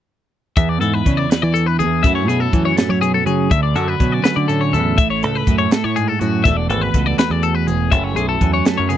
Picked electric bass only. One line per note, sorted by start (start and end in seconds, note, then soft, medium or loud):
0.57 0.82 E2 medium
0.82 1.01 G#2 medium
1.06 1.25 C#3 medium
1.43 1.81 E3 medium
1.80 2.05 E2 medium
2.05 2.28 F#2 medium
2.28 2.47 B2 medium
2.54 2.72 E3 medium
2.89 3.17 F#3 medium
3.27 3.53 F#3 medium
3.51 3.75 D2 medium
3.75 3.94 F#2 medium
4.00 4.19 B2 medium
4.37 4.75 D3 medium
4.74 4.99 E2 medium
4.99 5.24 A1 loud
5.24 5.42 C#2 medium
5.48 5.66 F#2 medium
5.84 6.12 A2 medium
6.21 6.47 A2 medium
6.46 6.70 E1 medium
6.70 6.88 G#1 medium
6.94 7.13 C#2 medium
7.30 7.69 E2 medium
7.67 7.92 E1 medium
7.92 8.18 F#1 medium
8.18 8.36 B1 medium
8.41 8.60 E2 medium
8.79 8.97 F#2 medium